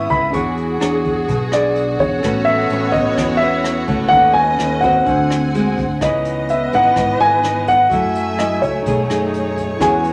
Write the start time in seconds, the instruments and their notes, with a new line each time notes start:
Already playing: nylon-string guitar G#3 E4 B4, string section B3 E4 D#6, tine electric piano C#4 E4 B4 D#6, alto flute E5, grand piano C#6
0.10 fingered electric bass C#2, grand piano B5, kick, closed hi-hat
0.30 fingered electric bass E2, nylon-string guitar E3 D4 G#4 C#5, tine electric piano D4 G#4 C#6, alto flute G#4, kick, closed hi-hat
0.35 string section F#4 G#4, tine electric piano F#5
0.57 closed hi-hat
0.80 fingered electric bass E2, nylon-string guitar D4 G#4 C#5, cross-stick, closed hi-hat
1.05 kick, closed hi-hat
1.28 fingered electric bass B1, nylon-string guitar B2, kick, closed hi-hat
1.52 nylon-string guitar D4 G#4, grand piano D5, cross-stick, closed hi-hat
1.76 closed hi-hat
1.99 fingered electric bass E2, grand piano C#5, kick, closed hi-hat
2.20 fingered electric bass A1, nylon-string guitar A3 C#4, string section B3 C#5, tine electric piano C#4 A4, alto flute A4, kick, cross-stick, closed hi-hat
2.24 nylon-string guitar F#4 B4, tine electric piano B4 F#5
2.45 grand piano E5, closed hi-hat
2.70 fingered electric bass A1, nylon-string guitar C#4 F#4 B4, closed hi-hat
2.92 grand piano D#5, kick, closed hi-hat
3.17 fingered electric bass E2, nylon-string guitar E3, kick, cross-stick, closed hi-hat
3.37 grand piano E5, closed hi-hat
3.42 nylon-string guitar C#4 F#4 B4
3.64 cross-stick, closed hi-hat
3.88 fingered electric bass C#2, nylon-string guitar A3 C#4 F#4, kick, closed hi-hat
4.09 fingered electric bass D#2, nylon-string guitar D#3, string section C#4 D#5, tine electric piano D#4 A4, alto flute B4, grand piano F#5, kick, closed hi-hat
4.13 tine electric piano C#5 F#5
4.33 grand piano G#5, closed hi-hat
4.59 fingered electric bass D#2, cross-stick, closed hi-hat
4.81 nylon-string guitar C4 F#4, grand piano F#5, kick, closed hi-hat
5.04 fingered electric bass D2, nylon-string guitar D3, string section C4 F#5 G#5, tine electric piano D4 C5 G#5, alto flute A4, kick, closed hi-hat
5.10 tine electric piano F#5
5.30 cross-stick, closed hi-hat
5.54 nylon-string guitar G#3 C4 F#4, closed hi-hat
5.78 fingered electric bass D2, kick, closed hi-hat
6.01 fingered electric bass C#2, nylon-string guitar C#3 E3 B3 D#4, string section B3 D#5, alto flute B4, tine electric piano C#5 D#5 B5, grand piano D#5, kick, cross-stick, closed hi-hat
6.25 closed hi-hat
6.49 grand piano E5, closed hi-hat
6.73 fingered electric bass G#1, nylon-string guitar E3 B3 D#4, grand piano F#5, kick, closed hi-hat
6.96 fingered electric bass G#1, nylon-string guitar G#2, kick, cross-stick, closed hi-hat
7.20 fingered electric bass G#1, grand piano G#5, closed hi-hat
7.44 nylon-string guitar E3 B3 D#4, cross-stick, closed hi-hat
7.67 grand piano F#5, kick, closed hi-hat
7.90 fingered electric bass F#2, nylon-string guitar F#3 A3 E4, string section A3 E5 G#5, tine electric piano F#4 E5, alto flute A4, kick, closed hi-hat
7.95 tine electric piano G#5
8.15 closed hi-hat
8.39 nylon-string guitar A3 E4, grand piano D#5, cross-stick, closed hi-hat
8.62 fingered electric bass C#2, grand piano C#5, kick, closed hi-hat
8.82 fingered electric bass B1, nylon-string guitar B2, tine electric piano D#4, string section D#4 G#4 C#5, alto flute G#4, kick, closed hi-hat
8.87 nylon-string guitar A3 D#4 G#4, tine electric piano C#5 G#5
9.08 fingered electric bass F#2, nylon-string guitar A3 D#4 G#4, cross-stick, closed hi-hat
9.34 closed hi-hat
9.57 kick, closed hi-hat
9.77 fingered electric bass E2, nylon-string guitar E3 C#4 F#4, string section G#3 F#4, tine electric piano E4 G#4 C#5, alto flute B4, kick, cross-stick, closed hi-hat
9.81 nylon-string guitar G#4, tine electric piano F#5, grand piano G#5
10.04 closed hi-hat